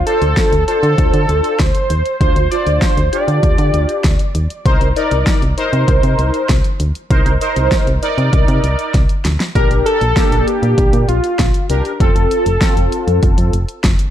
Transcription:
0.06 analog polysynth D4 F4 C5, analog synth lead A4, closed hi-hat
0.22 fm bass D2, closed hi-hat
0.37 kick, snare, closed hi-hat
0.52 fm bass D2, closed hi-hat
0.68 analog polysynth D4 F4 C5, analog synth lead A4, closed hi-hat
0.83 fm bass D3, closed hi-hat
0.98 fm bass D2, kick, closed hi-hat
1.14 fm bass D3, closed hi-hat
1.29 fm bass D2, closed hi-hat
1.44 closed hi-hat
1.59 fm bass D2, analog synth lead C5, kick, snare, closed hi-hat
1.75 closed hi-hat
1.90 fm bass D#2, closed hi-hat
2.06 closed hi-hat
2.21 fm bass D2, analog polysynth D4 F4 C5, analog synth lead C5, kick, closed hi-hat
2.36 fm bass D2, closed hi-hat
2.51 analog polysynth D4 F4 C5, analog synth lead D5, closed hi-hat
2.67 fm bass D2, closed hi-hat
2.82 analog synth lead C5, kick, snare, closed hi-hat
2.97 fm bass D2, closed hi-hat
3.13 analog polysynth D4 F4 G4, analog synth lead D5, closed hi-hat
3.28 fm bass D3, closed hi-hat
3.43 fm bass D2, kick, closed hi-hat
3.58 fm bass D3, closed hi-hat
3.74 fm bass D2, closed hi-hat
3.89 closed hi-hat
4.04 fm bass D2, kick, snare, closed hi-hat
4.19 closed hi-hat
4.35 fm bass D#2, closed hi-hat
4.50 closed hi-hat
4.66 fm bass C2, analog polysynth D#4 A#4 C5, kick, closed hi-hat
4.81 fm bass C2, closed hi-hat
4.96 analog polysynth D#4 A#4 D5, closed hi-hat
5.11 fm bass C2, closed hi-hat
5.27 kick, snare, closed hi-hat
5.42 fm bass C2, closed hi-hat
5.57 analog polysynth D#4 A#4 C5, closed hi-hat
5.73 fm bass C3, closed hi-hat
5.88 fm bass C2, kick, closed hi-hat
6.03 fm bass C3, closed hi-hat
6.19 fm bass C2, closed hi-hat
6.34 closed hi-hat
6.49 fm bass C2, kick, snare, closed hi-hat
6.64 closed hi-hat
6.80 fm bass D2, closed hi-hat
6.95 closed hi-hat
7.11 fm bass C2, analog polysynth D#4 A#4 C5, kick, closed hi-hat
7.26 fm bass C2, closed hi-hat
7.41 analog polysynth D#4 A#4 C5, closed hi-hat
7.56 fm bass C2, closed hi-hat
7.72 kick, snare, closed hi-hat
7.87 fm bass C2, closed hi-hat
8.02 analog polysynth D#4 A#4 D5, closed hi-hat
8.18 fm bass C3, closed hi-hat
8.33 fm bass C2, kick, closed hi-hat
8.48 fm bass C3, closed hi-hat
8.64 fm bass C2, closed hi-hat
8.79 closed hi-hat
8.94 fm bass C2, kick, snare, closed hi-hat
9.09 closed hi-hat
9.25 fm bass D2, snare, closed hi-hat
9.40 snare, closed hi-hat
9.55 fm bass A#1, analog polysynth D4 G4 A#4, analog synth lead A#4, kick, closed hi-hat
9.71 fm bass A#1, closed hi-hat
9.86 analog synth lead A4, closed hi-hat
10.01 fm bass A#1, closed hi-hat
10.16 analog polysynth A#3 D4 G4, kick, snare, closed hi-hat
10.32 fm bass A#1, closed hi-hat
10.47 analog synth lead G4, closed hi-hat
10.63 fm bass A#2, closed hi-hat
10.78 fm bass A#1, kick, closed hi-hat
10.93 fm bass A#2, closed hi-hat
11.09 fm bass A#1, analog synth lead F4, closed hi-hat
11.24 closed hi-hat
11.39 fm bass A#1, kick, snare, closed hi-hat
11.54 closed hi-hat
11.70 fm bass C2, analog polysynth D4 G4 A#4, closed hi-hat
11.85 closed hi-hat
12.00 fm bass F1, analog polysynth C4 F4 A4, analog synth lead A4, kick, closed hi-hat
12.16 fm bass F1, closed hi-hat
12.31 closed hi-hat
12.46 fm bass F1, closed hi-hat
12.61 analog polysynth C4 F4 A4, kick, snare, closed hi-hat
12.77 fm bass F1, closed hi-hat
12.92 closed hi-hat
13.07 fm bass F2, closed hi-hat
13.23 fm bass F1, kick, closed hi-hat
13.38 fm bass F2, closed hi-hat
13.53 fm bass F1, closed hi-hat
13.69 closed hi-hat
13.84 fm bass F1, kick, snare, closed hi-hat
13.99 closed hi-hat

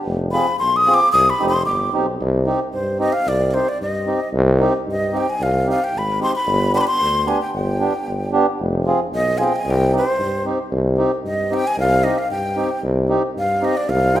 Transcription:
0.06 tuba F1
0.32 accordion C4 F4 G#4, flute B5
0.59 tuba B1, flute C6
0.76 flute D#6
0.86 accordion C4 F4 G#4
0.94 flute D6
1.12 tuba C2, flute D#6
1.30 flute B5
1.39 tuba F1, accordion C4 D#4 G4
1.49 flute C6
1.66 tuba G1, flute D6
1.93 tuba B1, accordion C4 D#4 G4
2.20 tuba C2
2.46 accordion C4 D#4 G4
2.73 tuba G2, flute C5
2.99 accordion C4 D#4 G4, flute D#5
3.12 flute F5
3.27 tuba C2, flute D5
3.51 accordion C4 D#4 G4, flute C5 D5
3.69 flute D5
3.81 tuba G2, flute D#5
4.06 accordion C4 D#4 G4
4.33 tuba C2
4.60 accordion C4 D#4 G4
4.87 tuba G2, flute D#5
5.12 accordion C4 D#4 G4
5.17 flute G5
5.30 flute G#5
5.40 tuba C2, flute F5
5.67 accordion C4 D#4 G4
5.71 flute F5
5.84 flute G5
5.94 tuba G#1, flute B5
6.20 accordion C4 D#4 G4, flute C6
6.36 flute B5
6.46 tuba G1
6.73 accordion B3 D4 G4, flute B5
6.78 flute B5 C6
6.87 flute C6
7.00 tuba D2
7.26 accordion B3 D4 G4, flute G#5
7.41 flute G5
7.53 tuba G1, flute G5
7.80 accordion B3 D4 G4
8.06 tuba G1
8.32 accordion B3 D4 G4
8.59 tuba F1
8.87 accordion C4 F4 G#4
9.13 tuba B1, flute D#5
9.38 accordion C4 F4 G#4, flute G#5
9.43 flute G5
9.56 flute G#5
9.65 tuba C2
9.70 flute G5
9.92 accordion C4 D#4 G4
9.98 flute C5
10.19 tuba G2
10.45 accordion C4 D#4 G4
10.72 tuba C2
10.98 accordion C4 D#4 G4
11.25 tuba G2, flute D#5
11.51 accordion C4 D#4 G4, flute G5
11.67 flute G#5
11.78 tuba C2, flute F5
12.04 accordion C4 D#4 G4, flute D#5
12.18 flute F5
12.30 tuba G2, flute G5
12.56 accordion C4 D#4 G4
12.83 tuba C2
13.09 accordion C4 D#4 G4
13.36 tuba G2, flute F5
13.62 accordion C4 D#4 G4, flute D#5
13.77 flute D5
13.89 tuba C2, flute F5
14.14 accordion C4 D#4 F4, flute G5

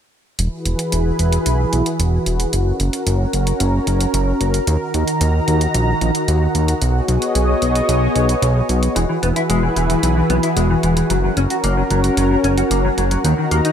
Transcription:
0.39 analog synth bass E1, analog synth pad E3 E4 F#4 G#4 B4, closed hi-hat
0.66 analog synth bass E1, closed hi-hat
0.79 closed hi-hat
0.92 analog synth bass E1, closed hi-hat
1.19 analog synth bass E1, closed hi-hat
1.32 closed hi-hat
1.46 analog synth bass B1, closed hi-hat
1.73 analog synth bass B1, closed hi-hat
1.86 closed hi-hat
2.00 analog synth bass E1, closed hi-hat
2.26 analog synth bass E1, closed hi-hat
2.40 closed hi-hat
2.53 analog synth bass F#1, analog synth pad C#4 A#4, closed hi-hat
2.80 analog synth bass F#1, closed hi-hat
2.93 closed hi-hat
3.07 analog synth bass F#1, closed hi-hat
3.33 analog synth bass F#1, closed hi-hat
3.47 closed hi-hat
3.60 analog synth bass F#1, closed hi-hat
3.87 analog synth bass F#1, closed hi-hat
4.01 closed hi-hat
4.14 analog synth bass F#1, closed hi-hat
4.41 analog synth bass F#1, closed hi-hat
4.54 closed hi-hat
4.67 analog synth bass D#2, analog synth pad D#3 D#4 F#4 A#5, closed hi-hat
4.94 analog synth bass D#2, closed hi-hat
5.08 closed hi-hat
5.21 analog synth bass D#2, closed hi-hat
5.48 analog synth bass D#2, closed hi-hat
5.61 closed hi-hat
5.74 analog synth bass A#1, closed hi-hat
6.01 analog synth bass A#1, closed hi-hat
6.15 closed hi-hat
6.28 analog synth bass D#2, closed hi-hat
6.55 analog synth bass D#2, closed hi-hat
6.68 closed hi-hat
6.82 analog synth bass B1, analog synth pad B3 G#4 C#5 D#5, closed hi-hat
7.08 analog synth bass B1, closed hi-hat
7.22 closed hi-hat
7.35 analog synth bass B1, closed hi-hat
7.62 analog synth bass B1, closed hi-hat
7.75 closed hi-hat
7.89 analog synth bass B1, closed hi-hat
8.16 analog synth bass B1, closed hi-hat
8.29 closed hi-hat
8.42 analog synth bass B1, closed hi-hat
8.69 analog synth bass B1, closed hi-hat
8.83 closed hi-hat
8.96 analog synth bass E1, analog synth pad E3 E4 F#4 G#4 B4, clean electric guitar E3, closed hi-hat
9.09 clean electric guitar E3
9.23 analog synth bass E1, clean electric guitar B3, closed hi-hat
9.36 clean electric guitar E4, closed hi-hat
9.50 analog synth bass E1, clean electric guitar G#3, closed hi-hat
9.63 clean electric guitar E3
9.76 analog synth bass E1, clean electric guitar E3, closed hi-hat
9.90 clean electric guitar E3, closed hi-hat
10.03 analog synth bass B1, clean electric guitar E3, closed hi-hat
10.17 clean electric guitar E3
10.30 analog synth bass B1, clean electric guitar B3, closed hi-hat
10.43 clean electric guitar E4, closed hi-hat
10.57 analog synth bass E1, clean electric guitar G#3, closed hi-hat
10.70 clean electric guitar E3
10.83 analog synth bass E1, clean electric guitar E3, closed hi-hat
10.97 clean electric guitar E3, closed hi-hat
11.10 analog synth bass F#1, clean electric guitar F#3, analog synth pad C#4 A#4, closed hi-hat
11.24 clean electric guitar F#3
11.37 analog synth bass F#1, clean electric guitar C#4, closed hi-hat
11.50 clean electric guitar F#4, closed hi-hat
11.64 analog synth bass F#1, clean electric guitar A#3, closed hi-hat
11.77 clean electric guitar F#3
11.90 analog synth bass F#1, clean electric guitar F#3, closed hi-hat
12.04 clean electric guitar F#3, closed hi-hat
12.17 analog synth bass F#1, clean electric guitar F#3, closed hi-hat
12.31 clean electric guitar F#3
12.44 analog synth bass F#1, clean electric guitar C#4, closed hi-hat
12.58 clean electric guitar F#4, closed hi-hat
12.71 analog synth bass F#1, clean electric guitar A#3, closed hi-hat
12.85 clean electric guitar F#3
12.98 analog synth bass F#1, clean electric guitar F#3, closed hi-hat
13.11 clean electric guitar F#3, closed hi-hat
13.24 analog synth bass D#2, analog synth pad D#3 D#4 A#4 A#5, clean electric guitar D#3, closed hi-hat
13.38 clean electric guitar D#3
13.51 analog synth bass D#2, clean electric guitar A#3, closed hi-hat
13.65 clean electric guitar D#4, closed hi-hat

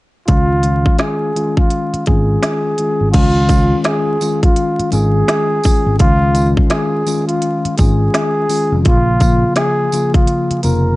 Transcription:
0.27 fingered electric bass C#2, tine electric piano D#3 G#3 C#4 F4, muted trumpet F4, kick, closed hi-hat
0.63 tine electric piano D#3 G#3 C#4 F4, closed hi-hat
0.86 kick
0.98 muted trumpet G#4, snare, closed hi-hat
1.35 tine electric piano D#3 G#3 C#4 F4, closed hi-hat
1.57 muted trumpet F4, kick
1.70 closed hi-hat
1.94 muted fingered electric bass stroke, closed hi-hat
2.06 fingered electric bass G#1, tine electric piano D#3 G#3 C#4 F4, muted trumpet G#4, kick, closed hi-hat
2.43 snare, closed hi-hat
2.78 tine electric piano D#3 G#3 C#4 F4, closed hi-hat
3.01 fingered electric bass G#1
3.12 fingered electric bass C#2, tine electric piano D#3 G#3 C#4 F4, muted trumpet F4, kick, closed hi-hat, crash
3.48 tine electric piano D#3 G#3 C#4 F4, kick, closed hi-hat, tambourine
3.84 muted trumpet G#4, snare, closed hi-hat
4.21 tine electric piano D#3 G#3 C#4 F4, closed hi-hat, tambourine
4.43 muted trumpet F4, kick, closed hi-hat
4.56 closed hi-hat
4.79 muted fingered electric bass stroke, closed hi-hat
4.91 fingered electric bass G#1, tine electric piano D#3 G#3 C#4 F4, muted trumpet G#4, closed hi-hat, tambourine
5.28 snare, closed hi-hat
5.64 tine electric piano D#3 G#3 C#4 F4, kick, open hi-hat, tambourine
5.86 fingered electric bass G#1
5.99 fingered electric bass C#2, tine electric piano D#3 G#3 C#4 F4, muted trumpet F4, kick, closed hi-hat
6.34 tine electric piano D#3 G#3 C#4 F4, closed hi-hat, tambourine
6.57 kick
6.70 muted trumpet G#4, snare, closed hi-hat
7.06 tine electric piano D#3 G#3 C#4 F4, closed hi-hat, tambourine
7.28 muted trumpet F4, closed hi-hat
7.42 closed hi-hat
7.65 muted fingered electric bass stroke, closed hi-hat
7.77 fingered electric bass G#1, tine electric piano D#3 G#3 C#4 F4, muted trumpet G#4, kick, closed hi-hat, tambourine
8.14 snare, closed hi-hat
8.49 tine electric piano D#3 G#3 C#4 F4, open hi-hat, tambourine
8.72 fingered electric bass F1
8.83 fingered electric bass A#1, tine electric piano C#3 F3 A#3 F4, muted trumpet F4, kick, closed hi-hat
9.20 tine electric piano C#3 F3 A#3 F4, kick, closed hi-hat, tambourine
9.56 muted trumpet G#4, snare, closed hi-hat
9.92 tine electric piano C#3 F3 A#3 F4, closed hi-hat, tambourine
10.14 muted trumpet F4, kick, closed hi-hat
10.27 closed hi-hat
10.51 muted fingered electric bass stroke, closed hi-hat
10.63 fingered electric bass F1, tine electric piano C#3 F3 A#3 F4, muted trumpet A#4, closed hi-hat, tambourine

